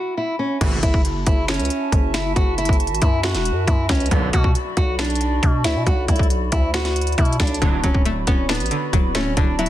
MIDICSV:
0, 0, Header, 1, 7, 480
1, 0, Start_track
1, 0, Tempo, 437956
1, 669, Time_signature, 4, 2, 24, 8
1, 10622, End_track
2, 0, Start_track
2, 0, Title_t, "Ambient pad"
2, 0, Program_c, 0, 92
2, 669, Note_on_c, 0, 76, 77
2, 670, Note_on_c, 0, 66, 83
2, 670, Note_on_c, 0, 81, 91
2, 4470, Note_off_c, 0, 76, 0
2, 4471, Note_off_c, 0, 81, 0
2, 4508, Note_on_c, 0, 74, 74
2, 4508, Note_on_c, 0, 83, 90
2, 8305, Note_off_c, 0, 66, 0
2, 8310, Note_off_c, 0, 74, 0
2, 8347, Note_on_c, 0, 74, 76
2, 8348, Note_on_c, 0, 66, 82
2, 10622, Note_off_c, 0, 66, 0
2, 10622, Note_off_c, 0, 74, 0
2, 10622, Note_off_c, 0, 83, 0
2, 10622, End_track
3, 0, Start_track
3, 0, Title_t, "Nylon-string guitar"
3, 0, Program_c, 1, 24
3, 0, Note_on_c, 1, 66, 84
3, 160, Note_off_c, 1, 66, 0
3, 191, Note_on_c, 1, 64, 84
3, 382, Note_off_c, 1, 64, 0
3, 428, Note_on_c, 1, 61, 82
3, 621, Note_off_c, 1, 61, 0
3, 674, Note_on_c, 1, 66, 79
3, 864, Note_off_c, 1, 66, 0
3, 909, Note_on_c, 1, 64, 81
3, 1101, Note_off_c, 1, 64, 0
3, 1388, Note_on_c, 1, 64, 78
3, 1580, Note_off_c, 1, 64, 0
3, 1627, Note_on_c, 1, 61, 94
3, 2304, Note_off_c, 1, 61, 0
3, 2345, Note_on_c, 1, 64, 82
3, 2539, Note_off_c, 1, 64, 0
3, 2586, Note_on_c, 1, 66, 84
3, 2779, Note_off_c, 1, 66, 0
3, 2828, Note_on_c, 1, 64, 80
3, 3021, Note_off_c, 1, 64, 0
3, 3310, Note_on_c, 1, 64, 87
3, 3502, Note_off_c, 1, 64, 0
3, 3550, Note_on_c, 1, 66, 82
3, 4001, Note_off_c, 1, 66, 0
3, 4029, Note_on_c, 1, 64, 84
3, 4221, Note_off_c, 1, 64, 0
3, 4270, Note_on_c, 1, 61, 86
3, 4462, Note_off_c, 1, 61, 0
3, 4509, Note_on_c, 1, 59, 82
3, 4701, Note_off_c, 1, 59, 0
3, 4750, Note_on_c, 1, 66, 92
3, 4942, Note_off_c, 1, 66, 0
3, 5228, Note_on_c, 1, 66, 87
3, 5420, Note_off_c, 1, 66, 0
3, 5467, Note_on_c, 1, 62, 89
3, 6145, Note_off_c, 1, 62, 0
3, 6187, Note_on_c, 1, 64, 84
3, 6380, Note_off_c, 1, 64, 0
3, 6430, Note_on_c, 1, 66, 82
3, 6622, Note_off_c, 1, 66, 0
3, 6672, Note_on_c, 1, 64, 84
3, 6863, Note_off_c, 1, 64, 0
3, 7149, Note_on_c, 1, 64, 82
3, 7341, Note_off_c, 1, 64, 0
3, 7390, Note_on_c, 1, 66, 88
3, 7841, Note_off_c, 1, 66, 0
3, 7869, Note_on_c, 1, 64, 84
3, 8061, Note_off_c, 1, 64, 0
3, 8112, Note_on_c, 1, 62, 83
3, 8303, Note_off_c, 1, 62, 0
3, 8351, Note_on_c, 1, 62, 84
3, 8542, Note_off_c, 1, 62, 0
3, 8589, Note_on_c, 1, 61, 80
3, 8781, Note_off_c, 1, 61, 0
3, 9070, Note_on_c, 1, 61, 76
3, 9262, Note_off_c, 1, 61, 0
3, 9313, Note_on_c, 1, 59, 87
3, 9988, Note_off_c, 1, 59, 0
3, 10030, Note_on_c, 1, 61, 79
3, 10222, Note_off_c, 1, 61, 0
3, 10269, Note_on_c, 1, 62, 77
3, 10461, Note_off_c, 1, 62, 0
3, 10509, Note_on_c, 1, 64, 80
3, 10622, Note_off_c, 1, 64, 0
3, 10622, End_track
4, 0, Start_track
4, 0, Title_t, "Synth pluck"
4, 0, Program_c, 2, 84
4, 8349, Note_on_c, 2, 50, 94
4, 8590, Note_on_c, 2, 54, 83
4, 8828, Note_on_c, 2, 57, 85
4, 9067, Note_on_c, 2, 59, 90
4, 9309, Note_on_c, 2, 62, 87
4, 9535, Note_off_c, 2, 50, 0
4, 9548, Note_on_c, 2, 50, 80
4, 9776, Note_off_c, 2, 54, 0
4, 9789, Note_on_c, 2, 54, 86
4, 10016, Note_off_c, 2, 57, 0
4, 10029, Note_on_c, 2, 57, 79
4, 10256, Note_off_c, 2, 50, 0
4, 10268, Note_off_c, 2, 59, 0
4, 10269, Note_on_c, 2, 50, 89
4, 10497, Note_off_c, 2, 54, 0
4, 10509, Note_off_c, 2, 62, 0
4, 10510, Note_on_c, 2, 54, 80
4, 10622, Note_off_c, 2, 50, 0
4, 10622, Note_off_c, 2, 54, 0
4, 10622, Note_off_c, 2, 57, 0
4, 10622, End_track
5, 0, Start_track
5, 0, Title_t, "Analog polysynth"
5, 0, Program_c, 3, 90
5, 669, Note_on_c, 3, 37, 94
5, 669, Note_on_c, 3, 45, 107
5, 669, Note_on_c, 3, 52, 107
5, 873, Note_off_c, 3, 37, 0
5, 873, Note_off_c, 3, 45, 0
5, 873, Note_off_c, 3, 52, 0
5, 4506, Note_on_c, 3, 42, 98
5, 4507, Note_on_c, 3, 35, 102
5, 4507, Note_on_c, 3, 50, 108
5, 4711, Note_off_c, 3, 42, 0
5, 4711, Note_off_c, 3, 50, 0
5, 4712, Note_off_c, 3, 35, 0
5, 8348, Note_on_c, 3, 38, 100
5, 8348, Note_on_c, 3, 47, 95
5, 8349, Note_on_c, 3, 54, 120
5, 8553, Note_off_c, 3, 38, 0
5, 8553, Note_off_c, 3, 47, 0
5, 8553, Note_off_c, 3, 54, 0
5, 10622, End_track
6, 0, Start_track
6, 0, Title_t, "808-style bass"
6, 0, Program_c, 4, 38
6, 669, Note_on_c, 4, 30, 116
6, 899, Note_off_c, 4, 30, 0
6, 909, Note_on_c, 4, 30, 107
6, 1370, Note_off_c, 4, 30, 0
6, 1389, Note_on_c, 4, 30, 106
6, 1748, Note_on_c, 4, 37, 103
6, 1764, Note_off_c, 4, 30, 0
6, 1862, Note_off_c, 4, 37, 0
6, 2108, Note_on_c, 4, 30, 108
6, 2569, Note_off_c, 4, 30, 0
6, 2589, Note_on_c, 4, 30, 108
6, 2934, Note_off_c, 4, 30, 0
6, 2948, Note_on_c, 4, 30, 108
6, 3188, Note_on_c, 4, 32, 109
6, 3204, Note_off_c, 4, 30, 0
6, 3302, Note_off_c, 4, 32, 0
6, 3307, Note_on_c, 4, 42, 108
6, 3668, Note_on_c, 4, 28, 108
6, 3685, Note_off_c, 4, 42, 0
6, 3849, Note_on_c, 4, 42, 103
6, 3865, Note_off_c, 4, 28, 0
6, 4020, Note_off_c, 4, 42, 0
6, 4028, Note_on_c, 4, 42, 111
6, 4258, Note_off_c, 4, 42, 0
6, 4268, Note_on_c, 4, 37, 107
6, 4499, Note_off_c, 4, 37, 0
6, 4508, Note_on_c, 4, 35, 115
6, 4738, Note_off_c, 4, 35, 0
6, 4748, Note_on_c, 4, 47, 107
6, 4979, Note_off_c, 4, 47, 0
6, 5228, Note_on_c, 4, 35, 105
6, 5919, Note_off_c, 4, 35, 0
6, 5948, Note_on_c, 4, 47, 113
6, 6188, Note_on_c, 4, 38, 105
6, 6204, Note_off_c, 4, 47, 0
6, 6308, Note_on_c, 4, 47, 99
6, 6324, Note_off_c, 4, 38, 0
6, 6422, Note_off_c, 4, 47, 0
6, 6428, Note_on_c, 4, 35, 115
6, 6659, Note_off_c, 4, 35, 0
6, 6669, Note_on_c, 4, 35, 104
6, 7129, Note_off_c, 4, 35, 0
6, 7147, Note_on_c, 4, 38, 105
6, 7839, Note_off_c, 4, 38, 0
6, 7869, Note_on_c, 4, 47, 107
6, 8099, Note_off_c, 4, 47, 0
6, 8109, Note_on_c, 4, 35, 110
6, 8339, Note_off_c, 4, 35, 0
6, 8349, Note_on_c, 4, 26, 112
6, 8579, Note_off_c, 4, 26, 0
6, 8588, Note_on_c, 4, 26, 102
6, 9049, Note_off_c, 4, 26, 0
6, 9068, Note_on_c, 4, 26, 109
6, 9428, Note_on_c, 4, 33, 105
6, 9445, Note_off_c, 4, 26, 0
6, 9542, Note_off_c, 4, 33, 0
6, 9788, Note_on_c, 4, 26, 112
6, 10249, Note_off_c, 4, 26, 0
6, 10269, Note_on_c, 4, 26, 114
6, 10614, Note_off_c, 4, 26, 0
6, 10622, End_track
7, 0, Start_track
7, 0, Title_t, "Drums"
7, 669, Note_on_c, 9, 36, 114
7, 669, Note_on_c, 9, 49, 102
7, 670, Note_on_c, 9, 42, 77
7, 779, Note_off_c, 9, 36, 0
7, 779, Note_off_c, 9, 42, 0
7, 779, Note_off_c, 9, 49, 0
7, 908, Note_on_c, 9, 42, 78
7, 909, Note_on_c, 9, 36, 90
7, 1018, Note_off_c, 9, 42, 0
7, 1019, Note_off_c, 9, 36, 0
7, 1029, Note_on_c, 9, 36, 114
7, 1139, Note_off_c, 9, 36, 0
7, 1149, Note_on_c, 9, 42, 73
7, 1259, Note_off_c, 9, 42, 0
7, 1386, Note_on_c, 9, 42, 77
7, 1388, Note_on_c, 9, 36, 103
7, 1496, Note_off_c, 9, 42, 0
7, 1498, Note_off_c, 9, 36, 0
7, 1626, Note_on_c, 9, 26, 104
7, 1628, Note_on_c, 9, 38, 126
7, 1628, Note_on_c, 9, 42, 70
7, 1688, Note_off_c, 9, 42, 0
7, 1688, Note_on_c, 9, 42, 68
7, 1735, Note_off_c, 9, 26, 0
7, 1737, Note_off_c, 9, 38, 0
7, 1748, Note_off_c, 9, 42, 0
7, 1748, Note_on_c, 9, 42, 68
7, 1809, Note_off_c, 9, 42, 0
7, 1809, Note_on_c, 9, 42, 68
7, 1866, Note_off_c, 9, 42, 0
7, 1866, Note_on_c, 9, 42, 78
7, 1976, Note_off_c, 9, 42, 0
7, 2108, Note_on_c, 9, 36, 99
7, 2110, Note_on_c, 9, 42, 85
7, 2218, Note_off_c, 9, 36, 0
7, 2220, Note_off_c, 9, 42, 0
7, 2345, Note_on_c, 9, 42, 76
7, 2346, Note_on_c, 9, 26, 77
7, 2348, Note_on_c, 9, 38, 95
7, 2455, Note_off_c, 9, 42, 0
7, 2456, Note_off_c, 9, 26, 0
7, 2458, Note_off_c, 9, 38, 0
7, 2589, Note_on_c, 9, 36, 118
7, 2589, Note_on_c, 9, 42, 74
7, 2698, Note_off_c, 9, 36, 0
7, 2699, Note_off_c, 9, 42, 0
7, 2828, Note_on_c, 9, 42, 62
7, 2828, Note_on_c, 9, 46, 78
7, 2908, Note_off_c, 9, 42, 0
7, 2908, Note_on_c, 9, 42, 63
7, 2937, Note_off_c, 9, 46, 0
7, 2949, Note_on_c, 9, 36, 115
7, 2988, Note_off_c, 9, 42, 0
7, 2988, Note_on_c, 9, 42, 65
7, 3058, Note_off_c, 9, 36, 0
7, 3069, Note_off_c, 9, 42, 0
7, 3069, Note_on_c, 9, 42, 63
7, 3149, Note_off_c, 9, 42, 0
7, 3149, Note_on_c, 9, 42, 63
7, 3228, Note_off_c, 9, 42, 0
7, 3228, Note_on_c, 9, 42, 62
7, 3305, Note_off_c, 9, 42, 0
7, 3305, Note_on_c, 9, 42, 84
7, 3307, Note_on_c, 9, 36, 101
7, 3415, Note_off_c, 9, 42, 0
7, 3417, Note_off_c, 9, 36, 0
7, 3545, Note_on_c, 9, 26, 99
7, 3547, Note_on_c, 9, 38, 123
7, 3547, Note_on_c, 9, 42, 51
7, 3654, Note_off_c, 9, 26, 0
7, 3656, Note_off_c, 9, 38, 0
7, 3656, Note_off_c, 9, 42, 0
7, 3666, Note_on_c, 9, 38, 66
7, 3667, Note_on_c, 9, 42, 83
7, 3776, Note_off_c, 9, 38, 0
7, 3777, Note_off_c, 9, 42, 0
7, 3786, Note_on_c, 9, 42, 70
7, 3895, Note_off_c, 9, 42, 0
7, 4028, Note_on_c, 9, 36, 101
7, 4030, Note_on_c, 9, 42, 83
7, 4137, Note_off_c, 9, 36, 0
7, 4139, Note_off_c, 9, 42, 0
7, 4265, Note_on_c, 9, 26, 80
7, 4267, Note_on_c, 9, 38, 97
7, 4267, Note_on_c, 9, 42, 48
7, 4268, Note_on_c, 9, 36, 101
7, 4327, Note_off_c, 9, 42, 0
7, 4327, Note_on_c, 9, 42, 62
7, 4374, Note_off_c, 9, 26, 0
7, 4377, Note_off_c, 9, 38, 0
7, 4378, Note_off_c, 9, 36, 0
7, 4388, Note_off_c, 9, 42, 0
7, 4388, Note_on_c, 9, 42, 68
7, 4447, Note_off_c, 9, 42, 0
7, 4447, Note_on_c, 9, 42, 83
7, 4508, Note_off_c, 9, 42, 0
7, 4508, Note_on_c, 9, 36, 115
7, 4508, Note_on_c, 9, 42, 75
7, 4617, Note_off_c, 9, 42, 0
7, 4618, Note_off_c, 9, 36, 0
7, 4748, Note_on_c, 9, 36, 93
7, 4748, Note_on_c, 9, 42, 82
7, 4857, Note_off_c, 9, 42, 0
7, 4858, Note_off_c, 9, 36, 0
7, 4868, Note_on_c, 9, 36, 107
7, 4978, Note_off_c, 9, 36, 0
7, 4989, Note_on_c, 9, 42, 73
7, 5099, Note_off_c, 9, 42, 0
7, 5226, Note_on_c, 9, 42, 76
7, 5228, Note_on_c, 9, 36, 104
7, 5336, Note_off_c, 9, 42, 0
7, 5338, Note_off_c, 9, 36, 0
7, 5467, Note_on_c, 9, 26, 102
7, 5469, Note_on_c, 9, 38, 127
7, 5469, Note_on_c, 9, 42, 68
7, 5529, Note_off_c, 9, 42, 0
7, 5529, Note_on_c, 9, 42, 68
7, 5577, Note_off_c, 9, 26, 0
7, 5579, Note_off_c, 9, 38, 0
7, 5590, Note_off_c, 9, 42, 0
7, 5590, Note_on_c, 9, 42, 69
7, 5649, Note_off_c, 9, 42, 0
7, 5649, Note_on_c, 9, 42, 68
7, 5707, Note_off_c, 9, 42, 0
7, 5707, Note_on_c, 9, 42, 79
7, 5817, Note_off_c, 9, 42, 0
7, 5948, Note_on_c, 9, 36, 96
7, 5950, Note_on_c, 9, 42, 83
7, 6058, Note_off_c, 9, 36, 0
7, 6060, Note_off_c, 9, 42, 0
7, 6186, Note_on_c, 9, 26, 79
7, 6186, Note_on_c, 9, 42, 76
7, 6188, Note_on_c, 9, 38, 95
7, 6295, Note_off_c, 9, 42, 0
7, 6296, Note_off_c, 9, 26, 0
7, 6298, Note_off_c, 9, 38, 0
7, 6429, Note_on_c, 9, 36, 120
7, 6429, Note_on_c, 9, 42, 74
7, 6538, Note_off_c, 9, 36, 0
7, 6538, Note_off_c, 9, 42, 0
7, 6668, Note_on_c, 9, 42, 75
7, 6668, Note_on_c, 9, 46, 79
7, 6669, Note_on_c, 9, 36, 88
7, 6748, Note_off_c, 9, 42, 0
7, 6748, Note_on_c, 9, 42, 60
7, 6777, Note_off_c, 9, 46, 0
7, 6778, Note_off_c, 9, 36, 0
7, 6788, Note_on_c, 9, 36, 112
7, 6828, Note_off_c, 9, 42, 0
7, 6828, Note_on_c, 9, 42, 46
7, 6898, Note_off_c, 9, 36, 0
7, 6908, Note_off_c, 9, 42, 0
7, 6908, Note_on_c, 9, 42, 80
7, 7018, Note_off_c, 9, 42, 0
7, 7145, Note_on_c, 9, 42, 83
7, 7148, Note_on_c, 9, 36, 102
7, 7255, Note_off_c, 9, 42, 0
7, 7257, Note_off_c, 9, 36, 0
7, 7386, Note_on_c, 9, 26, 101
7, 7388, Note_on_c, 9, 38, 126
7, 7388, Note_on_c, 9, 42, 69
7, 7495, Note_off_c, 9, 26, 0
7, 7497, Note_off_c, 9, 38, 0
7, 7497, Note_off_c, 9, 42, 0
7, 7507, Note_on_c, 9, 38, 65
7, 7508, Note_on_c, 9, 42, 67
7, 7616, Note_off_c, 9, 38, 0
7, 7617, Note_off_c, 9, 42, 0
7, 7628, Note_on_c, 9, 42, 70
7, 7688, Note_off_c, 9, 42, 0
7, 7688, Note_on_c, 9, 42, 61
7, 7748, Note_off_c, 9, 42, 0
7, 7748, Note_on_c, 9, 42, 51
7, 7808, Note_off_c, 9, 42, 0
7, 7808, Note_on_c, 9, 42, 42
7, 7868, Note_off_c, 9, 42, 0
7, 7868, Note_on_c, 9, 36, 96
7, 7868, Note_on_c, 9, 42, 53
7, 7949, Note_off_c, 9, 42, 0
7, 7949, Note_on_c, 9, 42, 57
7, 7978, Note_off_c, 9, 36, 0
7, 8029, Note_off_c, 9, 42, 0
7, 8029, Note_on_c, 9, 42, 64
7, 8107, Note_on_c, 9, 26, 79
7, 8109, Note_off_c, 9, 42, 0
7, 8109, Note_on_c, 9, 36, 100
7, 8109, Note_on_c, 9, 38, 97
7, 8109, Note_on_c, 9, 42, 72
7, 8189, Note_off_c, 9, 42, 0
7, 8189, Note_on_c, 9, 42, 81
7, 8216, Note_off_c, 9, 26, 0
7, 8218, Note_off_c, 9, 38, 0
7, 8219, Note_off_c, 9, 36, 0
7, 8268, Note_off_c, 9, 42, 0
7, 8268, Note_on_c, 9, 42, 88
7, 8348, Note_off_c, 9, 42, 0
7, 8348, Note_on_c, 9, 36, 115
7, 8348, Note_on_c, 9, 42, 77
7, 8458, Note_off_c, 9, 36, 0
7, 8458, Note_off_c, 9, 42, 0
7, 8587, Note_on_c, 9, 42, 81
7, 8588, Note_on_c, 9, 36, 87
7, 8697, Note_off_c, 9, 42, 0
7, 8698, Note_off_c, 9, 36, 0
7, 8708, Note_on_c, 9, 36, 115
7, 8818, Note_off_c, 9, 36, 0
7, 8828, Note_on_c, 9, 42, 75
7, 8938, Note_off_c, 9, 42, 0
7, 9065, Note_on_c, 9, 42, 78
7, 9068, Note_on_c, 9, 36, 98
7, 9175, Note_off_c, 9, 42, 0
7, 9177, Note_off_c, 9, 36, 0
7, 9305, Note_on_c, 9, 26, 103
7, 9307, Note_on_c, 9, 38, 123
7, 9307, Note_on_c, 9, 42, 70
7, 9368, Note_off_c, 9, 42, 0
7, 9368, Note_on_c, 9, 42, 68
7, 9415, Note_off_c, 9, 26, 0
7, 9417, Note_off_c, 9, 38, 0
7, 9428, Note_off_c, 9, 42, 0
7, 9428, Note_on_c, 9, 42, 68
7, 9488, Note_off_c, 9, 42, 0
7, 9488, Note_on_c, 9, 42, 68
7, 9547, Note_off_c, 9, 42, 0
7, 9547, Note_on_c, 9, 42, 74
7, 9656, Note_off_c, 9, 42, 0
7, 9788, Note_on_c, 9, 36, 96
7, 9790, Note_on_c, 9, 42, 86
7, 9898, Note_off_c, 9, 36, 0
7, 9900, Note_off_c, 9, 42, 0
7, 10026, Note_on_c, 9, 26, 79
7, 10026, Note_on_c, 9, 42, 81
7, 10028, Note_on_c, 9, 38, 97
7, 10135, Note_off_c, 9, 42, 0
7, 10136, Note_off_c, 9, 26, 0
7, 10138, Note_off_c, 9, 38, 0
7, 10268, Note_on_c, 9, 42, 76
7, 10269, Note_on_c, 9, 36, 113
7, 10378, Note_off_c, 9, 36, 0
7, 10378, Note_off_c, 9, 42, 0
7, 10508, Note_on_c, 9, 42, 63
7, 10508, Note_on_c, 9, 46, 81
7, 10589, Note_off_c, 9, 42, 0
7, 10589, Note_on_c, 9, 42, 64
7, 10618, Note_off_c, 9, 46, 0
7, 10622, Note_off_c, 9, 42, 0
7, 10622, End_track
0, 0, End_of_file